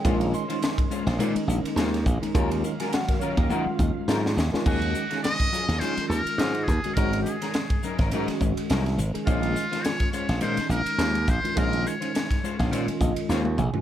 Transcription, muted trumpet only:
X:1
M:4/4
L:1/8
Q:"Swing 16ths" 1/4=104
K:Ebdor
V:1 name="Muted trumpet"
z8 | z8 | G2 e2 c B2 A | B A3 z4 |
F2 d d c B2 c | B d3 z4 |]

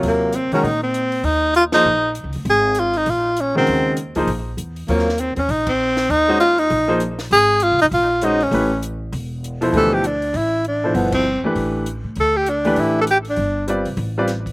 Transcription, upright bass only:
X:1
M:4/4
L:1/8
Q:"Swing" 1/4=198
K:Ebdor
V:1 name="Upright bass" clef=bass
E,,3 z B,,4 | E,,4 B,,,2- (3B,,, D,, =D,, | A,,,4 B,,,4 | E,,3 D,, B,,,2 _F,,2 |
E,,3 _F,, B,,,4 | E,,4 B,,,4 | A,,,2- (3A,,, C,, D,, B,,,4 | =A,,,4 =E,,,4 |
[K:Ddor] D,,4 A,,,4 | G,,,3 z A,,,3 A,, | D,,4 A,,,4 | G,,,3 ^C,, A,,,4 |]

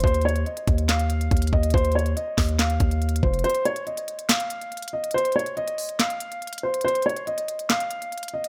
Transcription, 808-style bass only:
X:1
M:4/4
L:1/8
Q:1/4=141
K:Dblyd
V:1 name="808-style bass" clef=bass
E,,2 z E,,3 E,, E,, | E,,2 z E,,2 E,,2 F,,, | z8 | z8 |
z8 |]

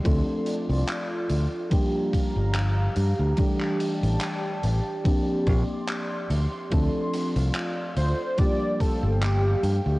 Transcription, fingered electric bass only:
X:1
M:4/4
L:1/16
Q:"Swing 16ths" 1/4=72
K:Dm
V:1 name="Fingered electric bass" clef=bass
D,, z2 C,, z2 D,, z4 G,,,2 z G,, D,, | z3 A,,, z2 A,,, z3 B,,, z3 D,, z | D,, z2 C,, z2 D,, z4 G,,,2 z G,, D,, |]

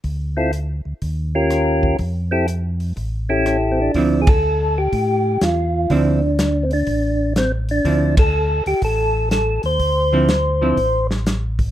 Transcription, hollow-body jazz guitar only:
X:1
M:4/4
L:1/8
Q:"Swing" 1/4=123
K:Dm
V:1 name="Hollow-body jazz guitar" clef=bass
z8 | z8 | [D,F,CE] z6 z | [D,F,CE] z6 z |
[D,F,CE] z6 z | z [D,F,CE] z [D,F,CE] z4 |]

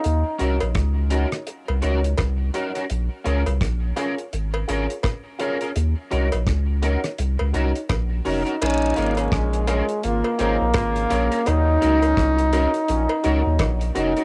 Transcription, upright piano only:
X:1
M:4/4
L:1/16
Q:"Swing 16ths" 1/4=84
K:Bbm
V:1 name="Upright piano"
z2 [EGBd] z3 [EGBd] z3 [EGBd] z3 [EGBd] z | z2 [FABd] z3 [FABd] z3 [FABd] z3 [FABd] z | z2 [EGBd] z3 [EGBd] z3 [EGBd] z3 [EGBd] z | z2 [FABd] z2 [Bd] [FABd] z3 [FABd] z3 [FABd] z |
z2 [EGBd] z2 [Bd] [EGBd] z3 [EGBd] z3 [EGBd] z |]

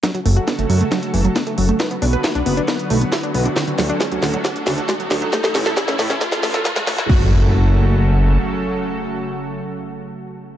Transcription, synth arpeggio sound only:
X:1
M:4/4
L:1/16
Q:1/4=136
K:F#m
V:1 name="Synth arpeggio sound"
F, F, A, F B, A, F, A, F, z E, F, B, A, F, A, | B, B, D B E D B, D B, z A, B, E D B, D | D, D, F, D G, F, D, F, D, z C, D, G, F, D, F, | A, A, C A C C A, C A, z A, A A, G, A, E |
F,2 z12 z2 | z16 |]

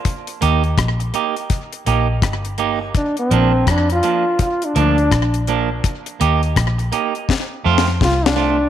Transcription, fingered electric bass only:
X:1
M:4/4
L:1/8
Q:"Swing 16ths" 1/4=83
K:Bb
V:1 name="Fingered electric bass" clef=bass
z E,, B,,, z2 B,,, G,,,2 | z B,,, F,, z2 D,, B,,,2 | z E,, B,,, z2 F,, C,,2 |]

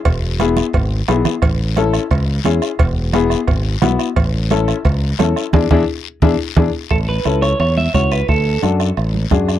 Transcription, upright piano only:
X:1
M:4/4
L:1/8
Q:1/4=175
K:A
V:1 name="Upright piano"
z2 [B,EG] z3 [B,EG] z | z2 [CEA] z3 [CEG] z | z2 [B,EG] z3 [B,EF] z | z2 [CEA] z3 [CEA] z |
[DEG] [DEG] z2 [DEG] z [DEG] z | z2 [CEA] z3 [CEF] z | z2 [DFA] z3 [DFG] z |]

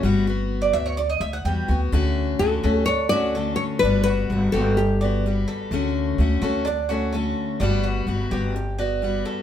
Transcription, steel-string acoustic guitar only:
X:1
M:4/4
L:1/8
Q:1/4=127
K:D
V:1 name="Steel-string acoustic guitar"
[G,B,F] [B,F]3 z2 [G,B,F] [B,F] | [D,A,CF]2 [D,A,CF] [A,CF] z [A,CF] [D,A,CF]2 | [G,B,F]2 [G,B,F] [B,F] z [B,F] [G,B,F]2 | [D,A,CF]2 [D,A,CF] [A,CF] z [A,CF] [D,A,CF]2 |
[G,B,F]2 [G,B,F] [B,F] z [B,F] [G,B,F]2 |]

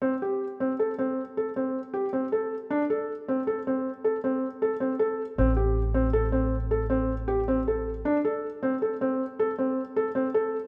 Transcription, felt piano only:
X:1
M:7/4
L:1/8
Q:1/4=157
K:Am
V:1 name="Felt piano"
C G2 C A C2 A C2 G C A2 | D A2 C A C2 A C2 A C A2 | C G2 C A C2 A C2 G C A2 | D A2 C A C2 A C2 A C A2 |]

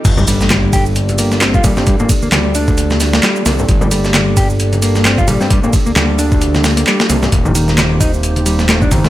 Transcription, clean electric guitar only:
X:1
M:4/4
L:1/16
Q:"Swing 16ths" 1/4=132
K:Gm
V:1 name="Clean electric guitar"
z G, G,4 G z3 B,2 C F G, C | G, B, z B, G,2 D4 z B, G,2 B, z | z G, G,4 G z3 B,2 C F G, C | G, B, z B, G,2 D4 z B, G,2 B, z |
z E, E,4 E z3 G,2 A, D E, A, |]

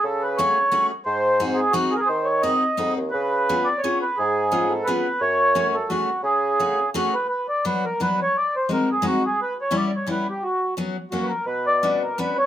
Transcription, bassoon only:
X:1
M:3/4
L:1/16
Q:"Swing" 1/4=174
K:F#m
V:1 name="Bassoon" clef=bass
C,12 | G,,12 | ^D,8 ^E,,2 ^D,,2 | C,8- C, z3 |
G,,12 | F,,12 | C,12 | [K:Bm] z12 |
z12 | z12 | z12 | B,,12 |]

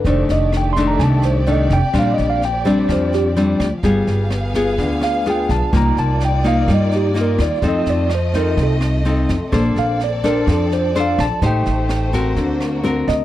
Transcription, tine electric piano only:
X:1
M:4/4
L:1/8
Q:1/4=127
K:Fmix
V:1 name="Tine electric piano"
c e (3g c' b [_a=a] c e g | (3f e f g d c G z2 | z4 z f g a | b a g f e G B d |
e d c B A z3 | z f d B A c f a | g4 z3 e |]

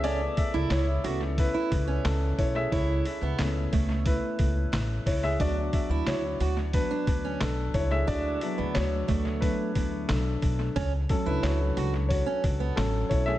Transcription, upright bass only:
X:1
M:4/4
L:1/16
Q:1/4=90
K:A
V:1 name="Upright bass" clef=bass
C,,2 z C,, C,,2 C,,3 z C,,2 C,,2 B,,,2 | C,,2 z C,, C,,2 C,,3 z C,,2 A,,,2 C,,2 | D,,2 z D,, D,,2 D,,3 z D,,2 B,,,2 C,,2 | D,,2 z D,, D,,2 D,,3 z D,,2 B,,,2 B,,,2 |
C,,2 z C,, C,,2 C,,3 z C,,2 A,,,2 B,,,2 |]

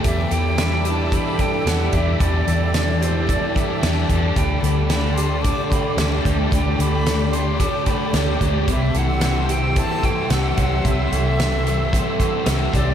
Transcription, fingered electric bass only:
X:1
M:4/4
L:1/8
Q:1/4=111
K:Em
V:1 name="Fingered electric bass" clef=bass
E,, E,,4 z E,, E,, | E,, E,,4 z E,, E,, | D,, D,,4 z D,, D,, | D,, D,,4 z D,, D,, |
C,, C,,4 z C,, C,, | C,, C,,4 z C,, C,, |]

